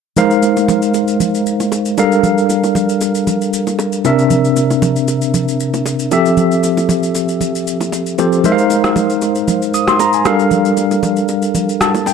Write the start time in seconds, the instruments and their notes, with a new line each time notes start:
0.17 tine electric piano G#3 D#4 A#4 C5 F5, low conga, shaker
0.31 shaker
0.43 low bongo, shaker
0.57 low bongo, shaker
0.68 high bongo, low conga, shaker
0.82 shaker
0.94 high bongo, shaker
1.08 shaker
1.20 high bongo, low conga, shaker
1.35 shaker
1.47 shaker
1.60 low bongo, shaker
1.72 high bongo, shaker
1.86 shaker
1.98 tine electric piano G3 D4 A4 A#4 F5, low bongo, shaker
2.12 shaker
2.23 low conga, shaker
2.38 shaker
2.49 low bongo, shaker
2.64 low bongo, shaker
2.75 high bongo, low conga, shaker
2.89 shaker
3.01 high bongo, shaker
3.15 shaker
3.27 high bongo, low conga, shaker
3.42 shaker
3.53 shaker
3.67 low bongo, shaker
3.79 high bongo, shaker
3.93 shaker
4.04 tine electric piano C3 C4 D4 A#4 E5, low bongo, shaker
4.19 shaker
4.30 low conga, shaker
4.45 shaker
4.56 low bongo, shaker
4.70 low bongo, shaker
4.82 high bongo, low conga, shaker
4.96 shaker
5.08 high bongo, shaker
5.22 shaker
5.34 high bongo, low conga, shaker
5.48 shaker
5.60 shaker
5.74 low bongo, shaker
5.86 high bongo, shaker
5.99 shaker
6.11 tine electric piano F3 C4 G4 A4 E5, low bongo, shaker
6.26 shaker
6.37 low conga, shaker
6.52 shaker
6.63 low bongo, shaker
6.77 low bongo, shaker
6.89 high bongo, low conga, shaker
7.03 shaker
7.15 high bongo, shaker
7.29 shaker
7.41 high bongo, low conga, shaker
7.55 shaker
7.67 shaker
7.81 low bongo, shaker
7.92 high bongo, shaker
8.06 shaker
8.18 tine electric piano F3 C4 G4 A4 C5, low bongo, shaker
8.32 shaker
8.44 tine electric piano G#3 D#4 A#4 C5 E5, low conga, shaker
8.52 tine electric piano F5
8.58 shaker
8.70 low bongo, shaker
8.84 cross-stick, low bongo, shaker
8.96 high bongo, low conga, shaker
9.10 shaker
9.22 high bongo, shaker
9.35 shaker
9.48 high bongo, low conga, shaker
9.62 shaker
9.74 tine electric piano D#6, shaker
9.88 tine electric piano C6, cross-stick, low bongo, shaker
9.99 tine electric piano A#5, high bongo, shaker
10.13 tine electric piano G#5, shaker
10.25 tine electric piano G3 D4 A4 A#4 F5, cross-stick, low bongo, shaker
10.39 shaker
10.51 low conga, shaker
10.65 shaker
10.77 low bongo, shaker
10.91 low bongo, shaker
11.03 high bongo, low conga, shaker
11.17 shaker
11.28 high bongo, shaker
11.42 shaker
11.55 high bongo, low conga, shaker
11.69 shaker
11.81 tine electric piano A5, cross-stick, shaker
11.94 low bongo, shaker
12.06 tine electric piano G5, high bongo, shaker